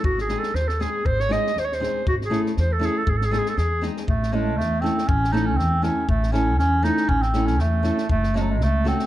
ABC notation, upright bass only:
X:1
M:2/4
L:1/8
Q:"Swing 16ths" 1/4=119
K:none
V:1 name="Upright bass" clef=bass
^G,,,2 ^D,,2 | ^G,,,2 ^D,,2 | ^G,,,2 E,,2 | ^G,,,2 E,,2 |
A,,,2 E,,2 | A,,,2 E,,2 | A,,,2 E,,2 | A,,,2 E,,2 |
^F,,,2 ^C,,2 |]